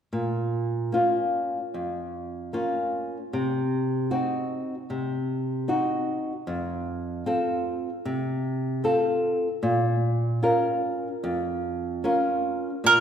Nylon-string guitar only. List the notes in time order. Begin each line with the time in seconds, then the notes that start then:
0.13 A#2
0.92 A#3 C#4 F4
1.74 F2
2.53 A#3 C#4 F4
3.33 C3
4.11 C4 D#4 F#4
4.90 C3
5.68 C4 D#4 F#4
6.47 F2
7.26 C4 F4 A4
8.05 C3
8.84 C4 F4 A4
9.63 A#2
10.43 C#4 F4 A#4
11.24 F2
12.04 C#4 F4 A#4
12.84 A#2